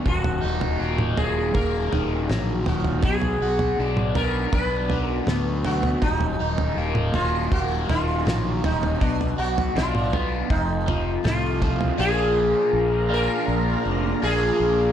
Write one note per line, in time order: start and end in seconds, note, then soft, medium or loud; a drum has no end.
0.00 1.18 F#3 medium
0.00 0.42 F#4 medium
0.06 0.39 D#1 medium
0.06 1.92 D#2 medium
0.06 1.17 F#4 medium
0.06 kick medium
0.06 floor tom medium
0.24 floor tom medium
0.43 0.77 D#1 medium
0.43 2.29 D#4 medium
0.61 floor tom medium
0.80 1.14 D#1 medium
0.80 1.54 A#3 medium
0.98 mid tom medium
1.17 1.51 D#1 medium
1.17 2.29 F#3 medium
1.17 1.54 G#4 medium
1.17 floor tom medium
1.54 1.88 D#1 medium
1.54 3.04 A#3 medium
1.54 2.25 A#4 medium
1.54 kick medium
1.54 floor tom medium
1.92 2.26 D#1 medium
1.92 2.66 D#3 medium
1.92 floor tom medium
2.30 2.63 A#1 medium
2.30 4.16 F#3 medium
2.30 snare medium
2.30 mid tom medium
2.66 3.05 D#1 medium
2.66 3.05 D#3 medium
2.66 3.06 F#4 medium
2.66 floor tom medium
2.84 floor tom medium
3.03 3.37 B1 medium
3.03 4.91 B2 medium
3.03 4.15 G#4 medium
3.03 kick medium
3.03 floor tom medium
3.22 floor tom medium
3.41 3.74 B1 medium
3.41 6.40 F#4 medium
3.59 floor tom medium
3.79 4.45 B1 medium
3.79 4.53 D4 medium
3.97 mid tom medium
4.15 5.28 B3 medium
4.15 4.52 A#4 medium
4.15 floor tom medium
4.53 5.20 B1 medium
4.53 6.03 D4 medium
4.53 5.02 B4 medium
4.53 kick medium
4.53 floor tom medium
4.90 5.65 F#3 medium
4.90 floor tom medium
5.02 5.24 A#4 medium
5.27 5.94 D2 medium
5.27 6.03 B3 medium
5.27 snare medium
5.27 mid tom medium
5.65 7.15 F#3 medium
5.65 6.00 F#4 medium
5.65 floor tom medium
5.83 floor tom medium
6.02 6.36 D#1 medium
6.02 7.89 D#2 medium
6.02 7.14 D#4 medium
6.02 kick medium
6.02 floor tom medium
6.21 floor tom medium
6.40 6.73 D#1 medium
6.40 8.27 D#4 medium
6.58 floor tom medium
6.77 7.10 D#1 medium
6.77 7.52 A#3 medium
6.95 mid tom medium
7.14 7.48 D#1 medium
7.14 8.25 F#3 medium
7.14 7.52 F4 medium
7.14 floor tom medium
7.52 7.85 D#1 medium
7.52 9.02 A#3 medium
7.52 7.89 F#4 medium
7.52 kick loud
7.52 floor tom medium
7.89 8.22 D#1 medium
7.89 8.63 D#3 medium
7.89 8.64 F4 medium
7.89 floor tom medium
8.26 8.60 A#1 medium
8.26 9.01 F#3 medium
8.26 snare medium
8.26 mid tom medium
8.64 8.97 D#1 medium
8.64 9.02 D#3 medium
8.64 9.02 D#4 medium
8.64 floor tom medium
8.83 floor tom medium
9.01 9.35 B1 medium
9.01 10.51 B2 medium
9.01 9.39 D4 medium
9.01 kick loud
9.01 floor tom medium
9.21 floor tom medium
9.38 9.71 B1 medium
9.38 10.50 F#4 medium
9.38 9.76 F#4 medium
9.58 floor tom medium
9.75 10.42 B1 medium
9.75 10.50 D4 medium
9.75 10.47 F4 medium
9.75 snare medium
9.75 floor tom medium
9.95 mid tom medium
10.13 10.50 B3 medium
10.13 floor tom medium
10.50 11.17 F1 medium
10.50 11.99 F2 medium
10.50 11.58 D#4 medium
10.50 kick medium
10.50 floor tom medium
10.88 11.61 F3 medium
10.88 floor tom medium
11.24 11.91 C2 medium
11.24 11.99 A3 medium
11.24 11.99 F4 medium
11.24 snare medium
11.24 mid tom medium
11.62 11.97 F3 medium
11.62 kick medium
11.62 floor tom medium
11.81 floor tom medium
11.97 12.53 A#1 medium
11.97 13.08 A#2 medium
11.97 13.08 F3 medium
11.97 13.09 A#3 medium
11.97 13.10 D4 medium
11.97 13.08 F4 medium
11.97 12.70 G#4 loud
11.97 14.92 A#4 medium
11.97 14.92 D5 medium
11.97 14.92 F5 medium
11.97 14.92 A#5 medium
12.73 13.27 A#1 medium
13.09 14.20 A#2 medium
13.09 14.21 F3 medium
13.09 14.21 A#3 medium
13.09 14.20 D4 medium
13.09 14.20 F4 medium
13.14 14.23 A#4 loud
13.48 13.75 A#1 medium
13.85 14.12 F1 medium
14.22 14.50 A#1 medium
14.22 14.92 A#2 medium
14.22 14.92 F3 medium
14.22 14.92 A#3 medium
14.22 14.92 D4 medium
14.22 14.92 F4 medium
14.22 14.92 G#4 medium
14.60 14.92 A#1 medium